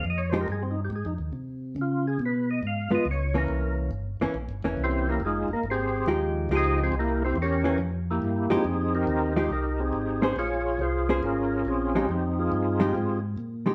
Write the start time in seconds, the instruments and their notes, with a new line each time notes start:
0.04 tonewheel organ F2
0.10 tonewheel organ D#5
0.18 tonewheel organ C#5
0.30 hollow-body jazz guitar F3 G#3 D#4, tonewheel organ C5
0.34 hollow-body jazz guitar G4
0.41 tonewheel organ A#4
0.48 tonewheel organ G2 G#4
0.63 tonewheel organ C4
0.71 tonewheel organ D#4
0.85 tonewheel organ G4
0.90 tonewheel organ G#2
0.96 tonewheel organ G#4
1.05 tonewheel organ F2 D#4
1.18 tonewheel organ D#2
1.33 tonewheel organ C3
1.76 tonewheel organ C#3
1.81 tonewheel organ F4
2.07 tonewheel organ G#4
2.19 tonewheel organ B2
2.26 tonewheel organ B4
2.51 tonewheel organ D#5
2.63 tonewheel organ G#2
2.67 tonewheel organ F5
2.90 tonewheel organ G#2, hollow-body jazz guitar G#3 B3 F4
2.95 tonewheel organ D#5
3.05 tonewheel organ C#2
3.11 tonewheel organ C#5
3.34 hollow-body jazz guitar E3 A#3 C#4, tonewheel organ A#4
3.48 tonewheel organ C2
3.91 tonewheel organ G1
4.20 tonewheel organ G1, hollow-body jazz guitar E3 A#3 C#4
4.34 tonewheel organ A#1
4.49 tonewheel organ G1
4.63 tonewheel organ E1, hollow-body jazz guitar E3 A#3 C#4
4.77 tonewheel organ C2
4.84 tonewheel organ C4 E4 G4 C5
5.09 tonewheel organ A#3 E4 G4 A#4
5.20 tonewheel organ F1
5.25 tonewheel organ G#3 D#4 F4 G#4
5.48 tonewheel organ F1
5.53 tonewheel organ A#3 A#4
5.63 tonewheel organ G#1
5.70 tonewheel organ C4 G4 G#4 C5
6.06 tonewheel organ D#2, hollow-body jazz guitar F3 G#3 D#4 G4
6.49 tonewheel organ C#2, hollow-body jazz guitar F3 G#3 D#4 G4
6.56 tonewheel organ D#4 G#4 C5 D#5
6.83 tonewheel organ C4 G4 G#4 C5
6.92 tonewheel organ C2
6.99 tonewheel organ A#3 E4 G4 A#4
7.25 tonewheel organ C4 E4 G4 C5
7.36 tonewheel organ E2
7.42 tonewheel organ C#4 G4 A#4 C#5
7.64 hollow-body jazz guitar E3 A#3 C#4
7.78 tonewheel organ F2
8.10 tonewheel organ A#3 E4 G4
8.22 tonewheel organ G2
8.50 tonewheel organ G2 C4 D#4 G#4, hollow-body jazz guitar F3 G#3 D#4 G4
8.64 tonewheel organ F2
8.95 tonewheel organ D#4 G4 A#4
9.07 tonewheel organ D#2
9.36 hollow-body jazz guitar F3 G#3 D#4 G4, tonewheel organ C5
9.50 tonewheel organ C2 D#4 G4 A#4
9.80 tonewheel organ C4 D#4 G#4
9.93 tonewheel organ G#1
10.21 hollow-body jazz guitar A#3 C#4 G#4 C5, tonewheel organ C5
10.36 tonewheel organ A#1 F4 G#4 C#5
10.79 tonewheel organ C2 F4 G#4 C5
11.09 hollow-body jazz guitar A#3 C#4 G#4 C5
11.23 tonewheel organ G#1 C#4 F4 A#4
11.65 tonewheel organ A#1 C4 C#4 G#4
11.95 hollow-body jazz guitar F3 G#3 D#4 G4
12.09 tonewheel organ F2 C4 D#4 G4
12.39 tonewheel organ C4 F4 G#4
12.52 tonewheel organ G2
12.80 hollow-body jazz guitar F3 G#3 D#4 G4
12.95 tonewheel organ G#2
13.38 tonewheel organ A#2
13.66 hollow-body jazz guitar F3 G#3 D#4 G4